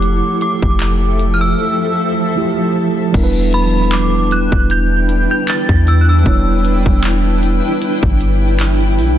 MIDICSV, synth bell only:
0, 0, Header, 1, 2, 480
1, 0, Start_track
1, 0, Tempo, 779221
1, 15, Time_signature, 4, 2, 24, 8
1, 5656, End_track
2, 0, Start_track
2, 0, Title_t, "Synth bell"
2, 0, Program_c, 0, 98
2, 0, Note_on_c, 0, 86, 94
2, 252, Note_off_c, 0, 86, 0
2, 259, Note_on_c, 0, 86, 88
2, 825, Note_on_c, 0, 89, 64
2, 837, Note_off_c, 0, 86, 0
2, 868, Note_off_c, 0, 89, 0
2, 868, Note_on_c, 0, 88, 80
2, 1673, Note_off_c, 0, 88, 0
2, 2181, Note_on_c, 0, 83, 88
2, 2421, Note_on_c, 0, 86, 87
2, 2425, Note_off_c, 0, 83, 0
2, 2663, Note_on_c, 0, 90, 95
2, 2666, Note_off_c, 0, 86, 0
2, 2883, Note_off_c, 0, 90, 0
2, 2902, Note_on_c, 0, 91, 111
2, 3264, Note_off_c, 0, 91, 0
2, 3272, Note_on_c, 0, 91, 103
2, 3382, Note_off_c, 0, 91, 0
2, 3382, Note_on_c, 0, 93, 105
2, 3622, Note_on_c, 0, 88, 91
2, 3626, Note_off_c, 0, 93, 0
2, 3704, Note_off_c, 0, 88, 0
2, 3704, Note_on_c, 0, 90, 68
2, 3748, Note_off_c, 0, 90, 0
2, 3752, Note_on_c, 0, 88, 93
2, 5164, Note_off_c, 0, 88, 0
2, 5656, End_track
0, 0, End_of_file